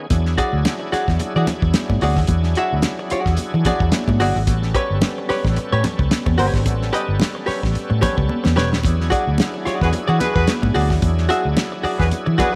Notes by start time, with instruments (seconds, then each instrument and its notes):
0.10 fingered electric bass E2, tonewheel organ F#3 D4 E4 G#4, kick, closed hi-hat, muted conga
0.26 snare
0.38 hollow-body jazz guitar F#4 G#4 D5, kick, closed hi-hat
0.53 fingered electric bass D2
0.65 snare, closed hi-hat, high conga
0.80 muted hollow-body jazz guitar stroke
0.92 hollow-body jazz guitar F#4 G#4 D5, muted fingered electric bass stroke, snare, closed hi-hat
1.08 fingered electric bass E2, muted hollow-body jazz guitar stroke, kick, snare
1.19 muted hollow-body jazz guitar stroke, muted fingered electric bass stroke, closed hi-hat, muted conga
1.36 fingered electric bass E3, hollow-body jazz guitar F#4 G#4 D5
1.47 muted hollow-body jazz guitar stroke, snare, closed hi-hat, muted conga, low conga
1.62 fingered electric bass E2, muted hollow-body jazz guitar stroke, kick
1.74 snare, closed hi-hat, high conga
1.90 fingered electric bass G#2, muted hollow-body jazz guitar stroke, kick, high conga
2.01 fingered electric bass D2, hollow-body jazz guitar F#4 G#4 D5, open hi-hat
2.16 fingered electric bass D#2, muted hollow-body jazz guitar stroke, kick, snare
2.27 fingered electric bass E2, kick, closed hi-hat, muted conga
2.43 snare
2.55 hollow-body jazz guitar F#4 G#4 E5, closed hi-hat
2.73 fingered electric bass D2
2.82 snare, closed hi-hat, high conga
2.99 muted hollow-body jazz guitar stroke
3.10 hollow-body jazz guitar F#4 G#4 D5, muted fingered electric bass stroke, closed hi-hat
3.26 fingered electric bass E2, muted hollow-body jazz guitar stroke, kick, snare
3.37 muted fingered electric bass stroke, closed hi-hat, muted conga
3.54 fingered electric bass E3, muted hollow-body jazz guitar stroke
3.64 hollow-body jazz guitar F#4 G#4 D5, kick, snare, closed hi-hat, muted conga, low conga
3.80 fingered electric bass E2, muted hollow-body jazz guitar stroke, kick
3.92 muted hollow-body jazz guitar stroke, snare, closed hi-hat, high conga
4.08 fingered electric bass G#2, muted hollow-body jazz guitar stroke, kick, high conga
4.20 fingered electric bass G1, hollow-body jazz guitar F#4 G#4 D5, snare, open hi-hat
4.36 fingered electric bass G#1, muted hollow-body jazz guitar stroke
4.47 fingered electric bass A1, tonewheel organ G3 B3 C#4 A4, kick, closed hi-hat, muted conga
4.62 snare
4.75 hollow-body jazz guitar G4 B4 C#5, kick, closed hi-hat
4.90 fingered electric bass G1
5.02 snare, closed hi-hat, high conga
5.18 muted hollow-body jazz guitar stroke
5.29 hollow-body jazz guitar G4 B4 C#5, muted fingered electric bass stroke, snare, open hi-hat
5.45 fingered electric bass A1, muted hollow-body jazz guitar stroke, kick, snare
5.56 muted hollow-body jazz guitar stroke, muted fingered electric bass stroke, closed hi-hat
5.72 fingered electric bass A2, hollow-body jazz guitar G4 B4 C#5
5.84 muted hollow-body jazz guitar stroke, snare, closed hi-hat, muted conga, low conga
5.99 fingered electric bass C#2, muted hollow-body jazz guitar stroke, kick
6.11 snare, closed hi-hat, high conga
6.26 fingered electric bass E2, muted hollow-body jazz guitar stroke, kick, high conga
6.38 fingered electric bass G1, hollow-body jazz guitar G4 B4 C#5, open hi-hat
6.54 fingered electric bass G#1, muted hollow-body jazz guitar stroke, kick, snare
6.66 fingered electric bass A1, kick, closed hi-hat, muted conga
6.82 snare
6.93 hollow-body jazz guitar G4 B4 D#5, closed hi-hat
7.08 fingered electric bass G1
7.20 snare, closed hi-hat, high conga
7.35 muted hollow-body jazz guitar stroke
7.46 hollow-body jazz guitar G4 B4 C#5, muted fingered electric bass stroke, snare, open hi-hat
7.62 fingered electric bass A1, muted hollow-body jazz guitar stroke, kick, snare
7.75 muted fingered electric bass stroke, closed hi-hat
7.90 fingered electric bass A2, muted hollow-body jazz guitar stroke
8.01 hollow-body jazz guitar G4 B4 C#5, kick, snare, closed hi-hat, muted conga, low conga
8.17 fingered electric bass C#2, muted hollow-body jazz guitar stroke, kick
8.29 muted hollow-body jazz guitar stroke, high conga
8.44 fingered electric bass E2, muted hollow-body jazz guitar stroke, snare, high conga
8.56 fingered electric bass E1, hollow-body jazz guitar G4 B4 C#5, snare
8.72 fingered electric bass D#1, muted hollow-body jazz guitar stroke, snare
8.83 fingered electric bass E2, tonewheel organ F#3 D4 E4 G#4, kick, closed hi-hat, muted conga
9.00 snare
9.10 hollow-body jazz guitar F#4 G#4 D5, kick, closed hi-hat
9.27 fingered electric bass D2
9.38 snare, closed hi-hat, high conga
9.54 muted hollow-body jazz guitar stroke
9.65 hollow-body jazz guitar F#4 G#4 D5, muted fingered electric bass stroke, snare, closed hi-hat
9.80 fingered electric bass E2, horn section F#4 G#4 B4, muted hollow-body jazz guitar stroke, kick, snare
9.93 muted hollow-body jazz guitar stroke, muted fingered electric bass stroke, closed hi-hat, muted conga
10.08 fingered electric bass E3, hollow-body jazz guitar F#4 G#4 D5
10.19 horn section F#4 G#4 B4, muted hollow-body jazz guitar stroke, snare, closed hi-hat, muted conga, low conga
10.34 fingered electric bass E2, horn section F#4 G#4 B4, muted hollow-body jazz guitar stroke, kick
10.47 snare, closed hi-hat, high conga
10.62 fingered electric bass G#2, muted hollow-body jazz guitar stroke, kick, high conga
10.74 fingered electric bass D2, hollow-body jazz guitar F#4 G#4 D5, open hi-hat
10.90 fingered electric bass D#2, muted hollow-body jazz guitar stroke, kick, snare
11.02 fingered electric bass E2, kick, closed hi-hat, muted conga
11.18 snare
11.29 hollow-body jazz guitar F#4 G#4 E5, closed hi-hat
11.45 fingered electric bass D2
11.57 snare, closed hi-hat, high conga
11.72 muted hollow-body jazz guitar stroke
11.83 hollow-body jazz guitar F#4 G#4 D5, muted fingered electric bass stroke, open hi-hat
11.98 fingered electric bass E2, horn section F#4 G#4 B4, muted hollow-body jazz guitar stroke, kick, snare
12.11 muted fingered electric bass stroke, closed hi-hat, muted conga
12.26 fingered electric bass E3, muted hollow-body jazz guitar stroke
12.38 hollow-body jazz guitar F#4 G#4 D5, horn section F#4 G#4 B4, kick, snare, closed hi-hat, muted conga, low conga